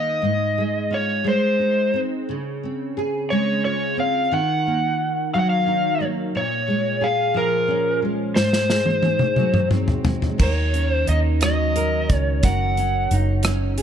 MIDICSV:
0, 0, Header, 1, 5, 480
1, 0, Start_track
1, 0, Tempo, 677201
1, 170, Time_signature, 6, 3, 24, 8
1, 9798, End_track
2, 0, Start_track
2, 0, Title_t, "Lead electric guitar"
2, 0, Program_c, 0, 29
2, 0, Note_on_c, 0, 75, 66
2, 668, Note_on_c, 0, 73, 59
2, 678, Note_off_c, 0, 75, 0
2, 908, Note_off_c, 0, 73, 0
2, 911, Note_on_c, 0, 72, 53
2, 1418, Note_off_c, 0, 72, 0
2, 2342, Note_on_c, 0, 73, 69
2, 2578, Note_off_c, 0, 73, 0
2, 2587, Note_on_c, 0, 73, 67
2, 2807, Note_off_c, 0, 73, 0
2, 2835, Note_on_c, 0, 77, 68
2, 3072, Note_off_c, 0, 77, 0
2, 3075, Note_on_c, 0, 78, 79
2, 3757, Note_off_c, 0, 78, 0
2, 3786, Note_on_c, 0, 77, 70
2, 3819, Note_off_c, 0, 77, 0
2, 3822, Note_on_c, 0, 78, 63
2, 3874, Note_off_c, 0, 78, 0
2, 3898, Note_on_c, 0, 77, 76
2, 4298, Note_off_c, 0, 77, 0
2, 4514, Note_on_c, 0, 73, 67
2, 4989, Note_on_c, 0, 77, 68
2, 4995, Note_off_c, 0, 73, 0
2, 5202, Note_off_c, 0, 77, 0
2, 5226, Note_on_c, 0, 70, 61
2, 5666, Note_off_c, 0, 70, 0
2, 5925, Note_on_c, 0, 72, 76
2, 6857, Note_off_c, 0, 72, 0
2, 7394, Note_on_c, 0, 73, 63
2, 7735, Note_off_c, 0, 73, 0
2, 7735, Note_on_c, 0, 72, 63
2, 7858, Note_off_c, 0, 72, 0
2, 7861, Note_on_c, 0, 75, 65
2, 7925, Note_off_c, 0, 75, 0
2, 8104, Note_on_c, 0, 75, 68
2, 8621, Note_off_c, 0, 75, 0
2, 8621, Note_on_c, 0, 73, 68
2, 8822, Note_on_c, 0, 78, 78
2, 8843, Note_off_c, 0, 73, 0
2, 9328, Note_off_c, 0, 78, 0
2, 9798, End_track
3, 0, Start_track
3, 0, Title_t, "Nylon-string guitar"
3, 0, Program_c, 1, 24
3, 0, Note_on_c, 1, 51, 63
3, 0, Note_on_c, 1, 58, 47
3, 0, Note_on_c, 1, 63, 36
3, 0, Note_on_c, 1, 66, 50
3, 155, Note_on_c, 1, 44, 57
3, 172, Note_off_c, 1, 51, 0
3, 209, Note_off_c, 1, 58, 0
3, 213, Note_off_c, 1, 66, 0
3, 214, Note_off_c, 1, 63, 0
3, 410, Note_on_c, 1, 56, 44
3, 642, Note_on_c, 1, 65, 47
3, 881, Note_off_c, 1, 56, 0
3, 881, Note_on_c, 1, 56, 61
3, 933, Note_off_c, 1, 44, 0
3, 936, Note_off_c, 1, 65, 0
3, 1128, Note_on_c, 1, 63, 37
3, 1372, Note_on_c, 1, 60, 47
3, 1622, Note_on_c, 1, 49, 51
3, 1662, Note_off_c, 1, 56, 0
3, 1664, Note_off_c, 1, 63, 0
3, 1665, Note_off_c, 1, 60, 0
3, 1867, Note_on_c, 1, 60, 41
3, 2105, Note_on_c, 1, 68, 50
3, 2347, Note_on_c, 1, 56, 52
3, 2587, Note_on_c, 1, 65, 41
3, 2805, Note_off_c, 1, 60, 0
3, 2814, Note_on_c, 1, 60, 50
3, 3056, Note_off_c, 1, 49, 0
3, 3059, Note_on_c, 1, 51, 60
3, 3105, Note_off_c, 1, 60, 0
3, 3110, Note_off_c, 1, 68, 0
3, 3111, Note_off_c, 1, 56, 0
3, 3309, Note_on_c, 1, 58, 44
3, 3786, Note_on_c, 1, 54, 46
3, 3807, Note_off_c, 1, 65, 0
3, 4013, Note_on_c, 1, 63, 45
3, 4252, Note_off_c, 1, 58, 0
3, 4255, Note_on_c, 1, 58, 53
3, 4494, Note_off_c, 1, 51, 0
3, 4500, Note_on_c, 1, 46, 64
3, 4541, Note_off_c, 1, 63, 0
3, 4542, Note_off_c, 1, 58, 0
3, 4546, Note_off_c, 1, 54, 0
3, 4733, Note_on_c, 1, 56, 49
3, 4969, Note_on_c, 1, 68, 51
3, 5204, Note_on_c, 1, 53, 57
3, 5443, Note_on_c, 1, 61, 46
3, 5683, Note_off_c, 1, 56, 0
3, 5686, Note_on_c, 1, 56, 45
3, 5921, Note_on_c, 1, 44, 62
3, 5926, Note_off_c, 1, 46, 0
3, 5969, Note_off_c, 1, 53, 0
3, 5969, Note_off_c, 1, 61, 0
3, 5970, Note_off_c, 1, 68, 0
3, 5972, Note_off_c, 1, 56, 0
3, 6159, Note_on_c, 1, 56, 46
3, 6396, Note_on_c, 1, 68, 48
3, 6646, Note_on_c, 1, 54, 55
3, 6882, Note_on_c, 1, 60, 45
3, 7107, Note_off_c, 1, 56, 0
3, 7116, Note_on_c, 1, 56, 42
3, 7358, Note_on_c, 1, 51, 62
3, 7362, Note_off_c, 1, 68, 0
3, 7365, Note_on_c, 1, 70, 51
3, 7368, Note_off_c, 1, 44, 0
3, 7412, Note_off_c, 1, 56, 0
3, 7416, Note_off_c, 1, 60, 0
3, 7611, Note_on_c, 1, 61, 49
3, 7850, Note_on_c, 1, 63, 47
3, 8091, Note_off_c, 1, 54, 0
3, 8094, Note_on_c, 1, 54, 57
3, 8329, Note_off_c, 1, 70, 0
3, 8332, Note_on_c, 1, 70, 51
3, 8574, Note_off_c, 1, 61, 0
3, 8577, Note_on_c, 1, 61, 49
3, 8810, Note_off_c, 1, 54, 0
3, 8812, Note_off_c, 1, 70, 0
3, 8813, Note_on_c, 1, 54, 60
3, 8815, Note_on_c, 1, 70, 53
3, 8863, Note_off_c, 1, 63, 0
3, 9051, Note_off_c, 1, 61, 0
3, 9054, Note_on_c, 1, 61, 46
3, 9075, Note_off_c, 1, 51, 0
3, 9296, Note_on_c, 1, 63, 52
3, 9531, Note_off_c, 1, 61, 0
3, 9534, Note_on_c, 1, 61, 53
3, 9762, Note_off_c, 1, 70, 0
3, 9765, Note_on_c, 1, 68, 49
3, 9798, Note_off_c, 1, 54, 0
3, 9798, Note_off_c, 1, 61, 0
3, 9798, Note_off_c, 1, 63, 0
3, 9798, Note_off_c, 1, 68, 0
3, 9798, End_track
4, 0, Start_track
4, 0, Title_t, "Fingered electric bass"
4, 0, Program_c, 2, 33
4, 7373, Note_on_c, 2, 39, 72
4, 7827, Note_off_c, 2, 39, 0
4, 7855, Note_on_c, 2, 39, 76
4, 8550, Note_off_c, 2, 39, 0
4, 8576, Note_on_c, 2, 37, 68
4, 8802, Note_off_c, 2, 37, 0
4, 8816, Note_on_c, 2, 30, 79
4, 9266, Note_off_c, 2, 30, 0
4, 9294, Note_on_c, 2, 30, 78
4, 9798, Note_off_c, 2, 30, 0
4, 9798, End_track
5, 0, Start_track
5, 0, Title_t, "Drums"
5, 5928, Note_on_c, 9, 38, 41
5, 5999, Note_off_c, 9, 38, 0
5, 6047, Note_on_c, 9, 38, 36
5, 6118, Note_off_c, 9, 38, 0
5, 6164, Note_on_c, 9, 38, 44
5, 6235, Note_off_c, 9, 38, 0
5, 6277, Note_on_c, 9, 48, 45
5, 6348, Note_off_c, 9, 48, 0
5, 6397, Note_on_c, 9, 48, 52
5, 6468, Note_off_c, 9, 48, 0
5, 6516, Note_on_c, 9, 47, 51
5, 6587, Note_off_c, 9, 47, 0
5, 6637, Note_on_c, 9, 47, 53
5, 6708, Note_off_c, 9, 47, 0
5, 6759, Note_on_c, 9, 45, 58
5, 6830, Note_off_c, 9, 45, 0
5, 6881, Note_on_c, 9, 45, 63
5, 6951, Note_off_c, 9, 45, 0
5, 7001, Note_on_c, 9, 43, 59
5, 7072, Note_off_c, 9, 43, 0
5, 7121, Note_on_c, 9, 43, 87
5, 7192, Note_off_c, 9, 43, 0
5, 7246, Note_on_c, 9, 43, 67
5, 7317, Note_off_c, 9, 43, 0
5, 7367, Note_on_c, 9, 49, 66
5, 7369, Note_on_c, 9, 36, 77
5, 7438, Note_off_c, 9, 49, 0
5, 7440, Note_off_c, 9, 36, 0
5, 7612, Note_on_c, 9, 42, 37
5, 7683, Note_off_c, 9, 42, 0
5, 7850, Note_on_c, 9, 42, 44
5, 7920, Note_off_c, 9, 42, 0
5, 8086, Note_on_c, 9, 42, 67
5, 8099, Note_on_c, 9, 37, 82
5, 8157, Note_off_c, 9, 42, 0
5, 8170, Note_off_c, 9, 37, 0
5, 8334, Note_on_c, 9, 42, 42
5, 8405, Note_off_c, 9, 42, 0
5, 8573, Note_on_c, 9, 42, 49
5, 8574, Note_on_c, 9, 36, 78
5, 8644, Note_off_c, 9, 42, 0
5, 8645, Note_off_c, 9, 36, 0
5, 8809, Note_on_c, 9, 42, 69
5, 8813, Note_on_c, 9, 36, 93
5, 8880, Note_off_c, 9, 42, 0
5, 8884, Note_off_c, 9, 36, 0
5, 9054, Note_on_c, 9, 42, 39
5, 9125, Note_off_c, 9, 42, 0
5, 9292, Note_on_c, 9, 42, 45
5, 9363, Note_off_c, 9, 42, 0
5, 9518, Note_on_c, 9, 42, 64
5, 9531, Note_on_c, 9, 37, 91
5, 9589, Note_off_c, 9, 42, 0
5, 9602, Note_off_c, 9, 37, 0
5, 9765, Note_on_c, 9, 42, 47
5, 9798, Note_off_c, 9, 42, 0
5, 9798, End_track
0, 0, End_of_file